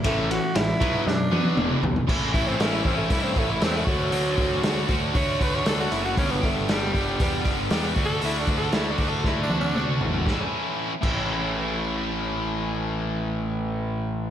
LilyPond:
<<
  \new Staff \with { instrumentName = "Tenor saxophone" } { \time 4/4 \key e \mixolydian \tempo 4 = 117 a8 fis'8 e'4 d'4. r8 | \key a \mixolydian r8 e'16 c'16 a16 e'16 c'16 a16 e'16 c'16 a16 e'16 c'16 a16 fis8~ | fis4. r8 cis''8 b'16 cis''16 a'16 fis'16 e'16 fis'16 | cis'16 b16 a8 g2 \tuplet 3/2 { r4 a'8 } |
\tuplet 3/2 { e'8 d'8 a'8 e'8 d'8 a'8 e'8 d'8 d'8~ } d'16 r8. | r1 | r1 | }
  \new Staff \with { instrumentName = "Distorted electric guitar" } { \time 4/4 \key e \mixolydian <a, e a>8 <a, e>8 <a, e>8 <b, fis b>8 <b, fis>8 <b, fis b>8 <e, b, e>8 <e, b,>8 | \key a \mixolydian <a, e a cis' e'>8 <a cis' e'>8 <e a cis' e'>8 <a cis' e'>8 <a, e a cis' e'>8 <a cis' e'>8 <e a cis' e'>8 <d a d' fis'>8 | <d a d' fis'>8 <a d' fis'>8 <d a d' fis'>8 <a d' fis'>8 <d a d' fis'>8 <a d' fis'>8 <d a d' fis'>4 | <g, d g b d' g'>8 <g b d' g'>8 <g b d' g'>8 <g b d' g'>8 <g, d g b d' g'>8 <g b d' g'>8 <g b d' g'>8 <d a d' fis'>8 |
<d a d' fis'>8 <a d' fis'>8 <d a d' fis'>8 <a d' fis'>8 <d a d' fis'>8 <a d' fis'>8 <d a d' fis'>4 | <a, e a cis' e'>8 r4 <a, e a cis' e'>2~ <a, e a cis' e'>8~ | <a, e a cis' e'>1 | }
  \new Staff \with { instrumentName = "Picked electric bass" } { \clef bass \time 4/4 \key e \mixolydian a,,4 a,,8 b,,8 fis,4 e,,8 b,,8 | \key a \mixolydian a,,8 a,,8 a,,8 a,,8 g,8 a,,8 e,8 d,8 | d,8 d,8 d,8 d,8 d,8 d,8 d,8 fis,,8 | g,,8 g,,8 g,,8 g,,8 e,8 g,,8 e,8 d,8 |
d,8 d,8 d,8 d,8 d,8 d,8 d,8 gis,,8 | a,,8 r4 a,,2~ a,,8~ | a,,1 | }
  \new DrumStaff \with { instrumentName = "Drums" } \drummode { \time 4/4 <bd cymr>8 cymr8 <cymr sn>8 <bd cymr>8 sn8 tommh16 tommh16 toml8 tomfh16 tomfh16 | <cymc bd>8 <hho bd>8 <hho sn>8 <hho bd>8 <hho bd>8 <hho bd>8 <hho sn>8 <hho bd>8 | hho8 <hho bd>8 <hho sn>8 <hho bd>8 <hho bd>8 <hho bd>8 <hho sn>8 hho8 | <hho bd>16 sn16 <hho bd>8 <hho sn>8 <hho bd>8 <hho bd>8 <hho bd>8 <hho sn>8 <hho bd>8 |
hho8 <hho bd>8 <hho sn>8 <hho bd>8 <bd sn>8 tommh16 tommh16 toml8 tomfh16 tomfh16 | <bd sn>4 r8 <cymc bd>8 r4 r4 | r4 r4 r4 r4 | }
>>